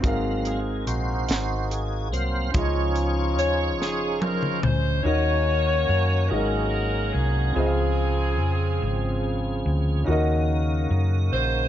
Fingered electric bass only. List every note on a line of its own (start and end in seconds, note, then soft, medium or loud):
0.87 1.26 A#1 medium
1.29 2.12 G#1 medium
2.12 2.51 C2 medium
2.55 3.38 C#2 medium
3.38 3.79 D#2 medium
3.79 4.59 F1 medium
4.64 5.02 D2 medium
5.05 5.85 D#2 medium
5.89 6.27 F#2 medium
6.31 7.10 G#1 loud
7.15 7.53 C2 medium
7.56 8.40 C#2 medium
8.40 8.78 F2 medium
8.82 9.61 G#1 medium
9.66 10.04 D2 medium
10.08 10.87 D#2 medium
10.90 11.29 F#2 medium
11.32 11.68 A#1 medium